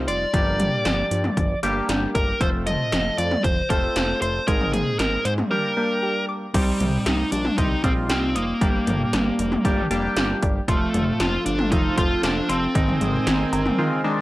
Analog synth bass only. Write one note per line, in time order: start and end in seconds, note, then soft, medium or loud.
0.08 0.26 F1 medium
0.34 0.70 G1 loud
0.85 1.03 G1 loud
1.11 1.29 G2 loud
1.37 1.55 G1 loud
1.63 1.81 G1 loud
1.89 2.07 G1 loud
2.15 2.33 G1 medium
2.41 2.77 F1 loud
2.92 3.10 F1 loud
3.18 3.36 F2 loud
3.44 3.62 F1 loud
3.70 3.88 F1 loud
3.96 4.14 F1 loud
4.22 4.40 F1 medium
4.48 4.84 G#1 loud
4.99 5.17 G#1 loud
5.25 5.43 G#2 medium
6.54 6.73 C2 loud
6.80 6.98 C2 loud
7.06 7.24 C2 loud
7.32 7.50 A#1 medium
7.58 7.76 C2 loud
7.84 8.11 A#1 loud
8.10 8.37 C2 loud
8.35 8.54 F1 medium
8.61 8.79 G1 loud
8.87 9.05 G1 loud
9.13 9.31 G1 loud
9.39 9.57 F1 loud
9.65 9.83 G1 loud
9.90 10.09 F1 loud
10.16 10.34 G1 loud
10.43 10.61 G1 loud
10.68 10.86 F1 loud
10.94 11.12 F1 loud
11.20 11.38 F1 loud
11.46 11.73 G1 loud
11.72 11.90 F1 loud
11.98 12.16 F1 medium
12.23 12.41 F1 loud
12.49 12.67 F1 medium
12.75 12.93 G#1 loud
13.01 13.19 G#1 loud
13.27 13.45 G#1 loud
13.53 13.71 G1 medium